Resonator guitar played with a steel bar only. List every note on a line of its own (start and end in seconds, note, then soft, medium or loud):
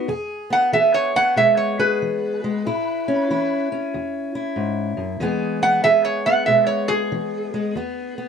0.53 0.73 F#5 medium
0.73 0.94 E5 medium
0.94 1.15 C#5 medium
1.16 1.37 F#5 medium
1.37 1.58 E5 medium
1.57 1.78 C#5 medium
1.80 3.67 B4 medium
5.63 5.83 F#5 medium
5.84 6.04 E5 medium
6.05 6.25 C#5 medium
6.26 6.46 F#5 medium
6.46 6.67 E5 medium
6.67 6.88 C#5 medium
6.88 8.28 G#4 medium